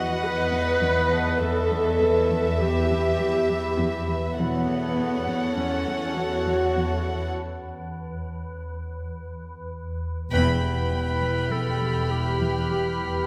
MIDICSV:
0, 0, Header, 1, 12, 480
1, 0, Start_track
1, 0, Key_signature, 1, "minor"
1, 0, Tempo, 594059
1, 1144, Time_signature, 5, 2, 24, 8
1, 10719, End_track
2, 0, Start_track
2, 0, Title_t, "Violin section"
2, 0, Program_c, 0, 48
2, 8346, Note_on_c, 0, 83, 23
2, 8827, Note_on_c, 0, 89, 25
2, 10719, Note_off_c, 0, 83, 0
2, 10719, Note_off_c, 0, 89, 0
2, 10719, End_track
3, 0, Start_track
3, 0, Title_t, "Violin section"
3, 0, Program_c, 1, 48
3, 0, Note_on_c, 1, 78, 44
3, 1115, Note_off_c, 1, 78, 0
3, 1145, Note_on_c, 1, 76, 51
3, 3512, Note_off_c, 1, 76, 0
3, 3538, Note_on_c, 1, 78, 49
3, 5909, Note_off_c, 1, 78, 0
3, 8344, Note_on_c, 1, 83, 40
3, 10712, Note_off_c, 1, 83, 0
3, 10719, End_track
4, 0, Start_track
4, 0, Title_t, "Ambient pad"
4, 0, Program_c, 2, 92
4, 0, Note_on_c, 2, 71, 46
4, 0, Note_on_c, 2, 75, 42
4, 0, Note_on_c, 2, 83, 43
4, 1141, Note_off_c, 2, 83, 0
4, 1149, Note_off_c, 2, 75, 0
4, 1149, Note_on_c, 2, 76, 45
4, 1151, Note_on_c, 2, 83, 44
4, 3515, Note_off_c, 2, 83, 0
4, 3538, Note_on_c, 2, 78, 46
4, 3540, Note_on_c, 2, 81, 46
4, 3542, Note_on_c, 2, 73, 45
4, 3547, Note_off_c, 2, 76, 0
4, 3548, Note_off_c, 2, 71, 0
4, 5941, Note_off_c, 2, 78, 0
4, 5942, Note_off_c, 2, 81, 0
4, 5943, Note_off_c, 2, 73, 0
4, 8344, Note_on_c, 2, 71, 55
4, 8346, Note_on_c, 2, 67, 54
4, 8347, Note_on_c, 2, 83, 54
4, 10712, Note_off_c, 2, 71, 0
4, 10713, Note_off_c, 2, 67, 0
4, 10713, Note_off_c, 2, 83, 0
4, 10719, End_track
5, 0, Start_track
5, 0, Title_t, "Vibraphone"
5, 0, Program_c, 3, 11
5, 0, Control_c, 3, 64, 127
5, 0, Note_on_c, 3, 64, 25
5, 0, Note_on_c, 3, 71, 40
5, 0, Note_on_c, 3, 78, 31
5, 899, Note_on_c, 3, 81, 33
5, 1108, Note_off_c, 3, 78, 0
5, 1159, Control_c, 3, 64, 0
5, 1160, Note_off_c, 3, 71, 0
5, 1166, Note_off_c, 3, 64, 0
5, 1290, Control_c, 3, 64, 127
5, 2309, Note_off_c, 3, 81, 0
5, 3539, Note_on_c, 3, 66, 29
5, 3543, Note_on_c, 3, 78, 36
5, 3561, Control_c, 3, 64, 0
5, 3670, Control_c, 3, 64, 127
5, 4949, Note_off_c, 3, 66, 0
5, 4951, Note_off_c, 3, 78, 0
5, 5960, Control_c, 3, 64, 0
5, 6115, Control_c, 3, 64, 127
5, 8360, Control_c, 3, 64, 0
5, 8507, Control_c, 3, 64, 127
5, 8589, Note_on_c, 3, 78, 22
5, 8592, Note_on_c, 3, 67, 21
5, 9994, Note_off_c, 3, 78, 0
5, 9996, Note_off_c, 3, 67, 0
5, 10719, End_track
6, 0, Start_track
6, 0, Title_t, "Violin section"
6, 0, Program_c, 4, 48
6, 0, Note_on_c, 4, 71, 46
6, 0, Note_on_c, 4, 75, 50
6, 1111, Note_off_c, 4, 75, 0
6, 1144, Note_on_c, 4, 76, 50
6, 3512, Note_off_c, 4, 76, 0
6, 3513, Note_off_c, 4, 71, 0
6, 3545, Note_on_c, 4, 69, 51
6, 3546, Note_on_c, 4, 73, 52
6, 5912, Note_off_c, 4, 69, 0
6, 5913, Note_off_c, 4, 73, 0
6, 8346, Note_on_c, 4, 79, 41
6, 10713, Note_off_c, 4, 79, 0
6, 10719, End_track
7, 0, Start_track
7, 0, Title_t, "Clarinet"
7, 0, Program_c, 5, 71
7, 8348, Note_on_c, 5, 71, 52
7, 9308, Note_on_c, 5, 69, 44
7, 9320, Note_off_c, 5, 71, 0
7, 9782, Note_on_c, 5, 67, 49
7, 9794, Note_off_c, 5, 69, 0
7, 10263, Note_off_c, 5, 67, 0
7, 10269, Note_on_c, 5, 67, 45
7, 10719, Note_off_c, 5, 67, 0
7, 10719, End_track
8, 0, Start_track
8, 0, Title_t, "Viola section"
8, 0, Program_c, 6, 48
8, 0, Note_on_c, 6, 66, 64
8, 184, Note_off_c, 6, 66, 0
8, 186, Note_on_c, 6, 71, 73
8, 1144, Note_on_c, 6, 69, 68
8, 1145, Note_off_c, 6, 71, 0
8, 2085, Note_off_c, 6, 69, 0
8, 2113, Note_on_c, 6, 67, 66
8, 3285, Note_off_c, 6, 67, 0
8, 3546, Note_on_c, 6, 59, 62
8, 4473, Note_off_c, 6, 59, 0
8, 4510, Note_on_c, 6, 61, 47
8, 4984, Note_on_c, 6, 66, 58
8, 4987, Note_off_c, 6, 61, 0
8, 5944, Note_off_c, 6, 66, 0
8, 8341, Note_on_c, 6, 64, 39
8, 10710, Note_off_c, 6, 64, 0
8, 10719, End_track
9, 0, Start_track
9, 0, Title_t, "Cello section"
9, 0, Program_c, 7, 48
9, 0, Note_on_c, 7, 40, 51
9, 82, Note_off_c, 7, 40, 0
9, 177, Note_on_c, 7, 52, 36
9, 323, Note_off_c, 7, 52, 0
9, 417, Note_on_c, 7, 40, 38
9, 563, Note_off_c, 7, 40, 0
9, 655, Note_on_c, 7, 40, 56
9, 802, Note_off_c, 7, 40, 0
9, 904, Note_on_c, 7, 52, 36
9, 1048, Note_off_c, 7, 52, 0
9, 1145, Note_on_c, 7, 40, 56
9, 1288, Note_off_c, 7, 40, 0
9, 1385, Note_on_c, 7, 40, 40
9, 1529, Note_off_c, 7, 40, 0
9, 1626, Note_on_c, 7, 40, 41
9, 1769, Note_off_c, 7, 40, 0
9, 1864, Note_on_c, 7, 40, 54
9, 2008, Note_off_c, 7, 40, 0
9, 2105, Note_on_c, 7, 40, 41
9, 2249, Note_off_c, 7, 40, 0
9, 2346, Note_on_c, 7, 40, 58
9, 2489, Note_off_c, 7, 40, 0
9, 2589, Note_on_c, 7, 52, 39
9, 2731, Note_off_c, 7, 52, 0
9, 2829, Note_on_c, 7, 40, 36
9, 2972, Note_off_c, 7, 40, 0
9, 3067, Note_on_c, 7, 40, 56
9, 3210, Note_off_c, 7, 40, 0
9, 3307, Note_on_c, 7, 52, 38
9, 3450, Note_off_c, 7, 52, 0
9, 3549, Note_on_c, 7, 40, 53
9, 3692, Note_off_c, 7, 40, 0
9, 3789, Note_on_c, 7, 40, 36
9, 3932, Note_off_c, 7, 40, 0
9, 4025, Note_on_c, 7, 40, 33
9, 4169, Note_off_c, 7, 40, 0
9, 4263, Note_on_c, 7, 40, 48
9, 4408, Note_off_c, 7, 40, 0
9, 4504, Note_on_c, 7, 40, 36
9, 4648, Note_off_c, 7, 40, 0
9, 4742, Note_on_c, 7, 40, 44
9, 4887, Note_off_c, 7, 40, 0
9, 4990, Note_on_c, 7, 52, 31
9, 5133, Note_off_c, 7, 52, 0
9, 5226, Note_on_c, 7, 40, 29
9, 5369, Note_off_c, 7, 40, 0
9, 5461, Note_on_c, 7, 40, 39
9, 5606, Note_off_c, 7, 40, 0
9, 5700, Note_on_c, 7, 52, 26
9, 5845, Note_off_c, 7, 52, 0
9, 8349, Note_on_c, 7, 40, 54
9, 8492, Note_off_c, 7, 40, 0
9, 8584, Note_on_c, 7, 52, 28
9, 8728, Note_off_c, 7, 52, 0
9, 8826, Note_on_c, 7, 52, 28
9, 8970, Note_off_c, 7, 52, 0
9, 9061, Note_on_c, 7, 52, 27
9, 9206, Note_off_c, 7, 52, 0
9, 9304, Note_on_c, 7, 40, 40
9, 9448, Note_off_c, 7, 40, 0
9, 9535, Note_on_c, 7, 40, 29
9, 9682, Note_off_c, 7, 40, 0
9, 9777, Note_on_c, 7, 52, 30
9, 9923, Note_off_c, 7, 52, 0
9, 10019, Note_on_c, 7, 40, 37
9, 10165, Note_off_c, 7, 40, 0
9, 10268, Note_on_c, 7, 52, 29
9, 10411, Note_off_c, 7, 52, 0
9, 10500, Note_on_c, 7, 52, 26
9, 10645, Note_off_c, 7, 52, 0
9, 10719, End_track
10, 0, Start_track
10, 0, Title_t, "Cello section"
10, 0, Program_c, 8, 48
10, 0, Note_on_c, 8, 40, 42
10, 3511, Note_off_c, 8, 40, 0
10, 3545, Note_on_c, 8, 40, 43
10, 5912, Note_off_c, 8, 40, 0
10, 8341, Note_on_c, 8, 40, 43
10, 10710, Note_off_c, 8, 40, 0
10, 10719, End_track
11, 0, Start_track
11, 0, Title_t, "Synth drone"
11, 0, Program_c, 10, 95
11, 0, Note_on_c, 10, 40, 61
11, 3516, Note_off_c, 10, 40, 0
11, 3551, Note_on_c, 10, 40, 60
11, 8315, Note_off_c, 10, 40, 0
11, 8354, Note_on_c, 10, 40, 57
11, 10717, Note_off_c, 10, 40, 0
11, 10719, End_track
12, 0, Start_track
12, 0, Title_t, "Double bass section"
12, 0, Program_c, 11, 48
12, 3544, Note_on_c, 11, 28, 40
12, 3992, Note_off_c, 11, 28, 0
12, 8343, Note_on_c, 11, 28, 47
12, 10711, Note_off_c, 11, 28, 0
12, 10719, End_track
0, 0, End_of_file